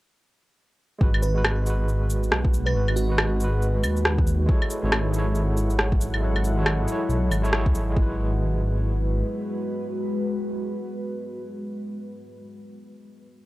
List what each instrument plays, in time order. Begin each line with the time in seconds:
0.99 detuned saw bass G#1, tine electric piano G#3 F#4, ambient pad G#3 F#4 B4, kick
1.03 tine electric piano B4
1.14 claves
1.22 fm electric piano B4, shaker
1.34 tine electric piano G#3 F#4 B4
1.45 cross-stick, claves
1.62 tine electric piano G#3
1.66 tine electric piano F#4 B4, shaker
1.88 shaker
2.10 detuned saw bass G#1, shaker
2.23 shaker
2.31 detuned saw bass B1, cross-stick
2.45 kick
2.54 shaker
2.66 fm electric piano B4, claves
2.72 detuned saw bass G#1, tine electric piano G#3 F#4 B4
2.88 claves
2.96 fm electric piano F#4, shaker
3.08 tine electric piano G#3 F#4 B4
3.18 cross-stick, claves
3.36 tine electric piano G#3, shaker
3.41 tine electric piano F#4 B4
3.62 shaker
3.83 detuned saw bass D#2, claves, shaker
3.97 shaker
4.05 cross-stick
4.18 kick
4.27 shaker
4.46 ambient pad F#3 E4 F#5, tine electric piano G#3 E4 A4, kick
4.50 tine electric piano C#5
4.62 claves
4.70 shaker
4.82 detuned saw bass G#1, tine electric piano G#3 E4 A4 C#5
4.92 cross-stick, claves
5.11 tine electric piano E4 G#4, shaker
5.16 tine electric piano A4 C#5
5.35 shaker
5.57 shaker
5.70 shaker
5.79 cross-stick
5.92 kick
6.01 shaker
6.14 claves
6.20 tine electric piano G#3 E4 A4
6.24 tine electric piano C#5
6.36 claves
6.44 shaker
6.56 tine electric piano G#3 E4 A4 C#5
6.66 cross-stick, claves
6.84 tine electric piano E4 G#4, shaker
6.89 tine electric piano A4 C#5
7.09 detuned saw bass B1, shaker
7.31 detuned saw bass G#1, claves, shaker
7.42 tine electric piano G#3 E4 A4 C#5, shaker
7.51 tine electric piano E4 G#4 A4, cross-stick
7.55 tine electric piano C#5
7.66 detuned saw bass D#2, kick
7.74 detuned saw bass G#1, shaker
7.90 tine electric piano G#3
7.96 detuned saw bass G#1, ambient pad G#3 F#4 B4, tine electric piano F#4, kick
8.02 tine electric piano B4